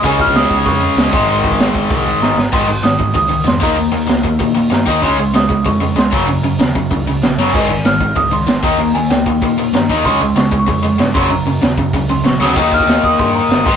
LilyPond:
<<
  \new Staff \with { instrumentName = "Celesta" } { \time 4/4 \key aes \major \tempo 4 = 191 aes''8 f'''8 ees'''4 des'''4. c'''8~ | c'''2. bes''4 | c'''4 ees'''4 ees'''4 c'''8 bes''8~ | bes''2~ bes''8 r8 bes''4 |
c'''4 ees'''4 des'''4 c'''8 bes''8~ | bes''2~ bes''8 r4. | aes''4 f'''4 ees'''8 c'''4 bes''8 | bes''8 aes''8 g''4. r8 bes''4 |
c'''4 des'''8. des'''4.~ des'''16 c'''8 | bes''2~ bes''8 c'''8 des'''8 ees'''8 | bes''8 f'''4 ees'''8 c'''8 bes''4 c'''8 | }
  \new Staff \with { instrumentName = "Distorted electric guitar" } { \clef bass \time 4/4 \key aes \major <des aes des'>2~ <des aes des'>8 <des aes des'>8 <des aes des'>8 <aes, ees aes>8~ | <aes, ees aes>2 <aes, ees aes>8 <aes, ees aes>4 r8 | <aes, ees aes>8 <aes, ees>8 <aes, ees>8 <aes, ees>8 <aes, ees>8 <aes, ees>8 <aes, ees>8 <ees bes ees'>8 | <ees bes>8 <ees bes>8 <ees bes>8 <ees bes>8 <ees bes>8 <ees bes>8 <ees bes>8 <ees bes ees'>8 |
<des aes des'>8 <des aes>8 <des aes>8 <des aes>8 <des aes>8 <des aes>8 <des aes>8 <ges, des ges>8 | <ges, des>8 <ges, des>8 <ges, des>8 <ges, des>8 <ges, des>8 <ges, des>8 <ges, des>8 <ges, des ges>8 | <aes, ees aes>8 <aes, ees>8 <aes, ees>8 <aes, ees>8 <aes, ees>8 <aes, ees>8 <aes, ees>8 <ees bes ees'>8 | <ees bes>8 <ees bes>8 <ees bes>8 <ees bes>8 <ees bes>8 <ees bes>8 <ees bes>8 <ees bes ees'>8 |
<des aes des'>8 <des aes>8 <des aes>8 <des aes>8 <des aes>8 <des aes>8 <des aes>8 <ges, des ges>8 | <ges, des>8 <ges, des>8 <ges, des>8 <ges, des>8 <ges, des>8 <ges, des>8 <ges, des>8 <ges, des ges>8 | r1 | }
  \new Staff \with { instrumentName = "Overdriven electric guitar" } { \clef bass \time 4/4 \key aes \major <des aes des'>2.~ <des aes des'>8 <aes, ees aes>8~ | <aes, ees aes>2.~ <aes, ees aes>8 r8 | <aes, ees aes>8 <aes, ees>8 <aes, ees>8 <aes, ees>8 <aes, ees>8 <aes, ees>8 <aes, ees>8 <ees bes ees'>8 | <ees bes>8 <ees bes>8 <ees bes>8 <ees bes>8 <ees bes>8 <ees bes>8 <ees bes>8 <ees bes ees'>8 |
<des aes des'>8 <des aes>8 <des aes>8 <des aes>8 <des aes>8 <des aes>8 <des aes>8 <ges, des ges>8 | <ges, des>8 <ges, des>8 <ges, des>8 <ges, des>8 <ges, des>8 <ges, des>8 <ges, des>8 <ges, des ges>8 | <aes, ees aes>8 <aes, ees>8 <aes, ees>8 <aes, ees>8 <aes, ees>8 <aes, ees>8 <aes, ees>8 <ees bes ees'>8 | <ees bes>8 <ees bes>8 <ees bes>8 <ees bes>8 <ees bes>8 <ees bes>8 <ees bes>8 <ees bes ees'>8 |
<des aes des'>8 <des aes>8 <des aes>8 <des aes>8 <des aes>8 <des aes>8 <des aes>8 <ges, des ges>8 | <ges, des>8 <ges, des>8 <ges, des>8 <ges, des>8 <ges, des>8 <ges, des>8 <ges, des>8 <ges, des ges>8 | <ees bes ees'>2.~ <ees bes ees'>8 <aes, ees aes>8 | }
  \new Staff \with { instrumentName = "Picked electric bass" } { \clef bass \time 4/4 \key aes \major des,4 des,8 des,8 f,4 des,8 aes,,8 | aes,,4 aes,,8 aes,,8 c,4 aes,,8 aes,,8 | aes,,8 aes,,8 aes,,8 aes,,8 des,4 f,8 ees,8 | ees,8 ees,8 des,8 ees,8 bes,4 g,8 ees,8 |
des,8 des,8 des,8 des,8 f,4 des,8 ges,,8 | ges,,8 ges,,8 ees,8 ges,,8 des,4 bes,,8 ges,,8 | aes,,8 aes,,8 aes,,8 aes,,8 des,4 aes,,8 ees,8 | ees,8 ees,8 des,8 ees,8 bes,4 g,8 ees,8 |
des,8 des,8 des,8 des,8 f,4 g,8 ges,,8 | ges,,8 ges,,8 ees,8 ges,,8 des,4 bes,,8 d,8 | ees,4 ees,8 ees,8 g,4 g,,8 aes,,8 | }
  \new DrumStaff \with { instrumentName = "Drums" } \drummode { \time 4/4 <hho bd>8 bd16 bd16 <hho sn>8 bd8 <hho bd>4 <hho sn>8 bd8 | hho8 bd16 bd16 <hho sn>8 bd8 <hho bd>4 sn8 sn8 | <cymc bd>4 <hho sn>8 bd8 <hho bd>4 <hho sn>8 bd8 | hho4 <hho sn>8 bd8 <hho bd>4 <hho sn>8 bd8 |
<hho bd>4 <hho sn>8 bd8 <hho bd>4 <hho sn>8 bd8 | hho4 <hho sn>8 bd8 <hho bd>4 <hho sn>8 sn8 | <cymc bd>4 <hho sn>8 bd8 <hho bd>4 <hho sn>8 bd8 | hho4 <hho sn>8 bd8 <hho bd>4 <hho sn>8 bd8 |
<hho bd>4 <hho sn>8 bd8 <hho bd>4 <hho sn>8 bd8 | hho4 <hho sn>8 bd8 <hho bd>4 <hho sn>8 sn8 | <cymc bd>8 bd16 bd16 <hho sn>8 bd8 <hho bd>4 <hho sn>8 <cymc bd>8 | }
>>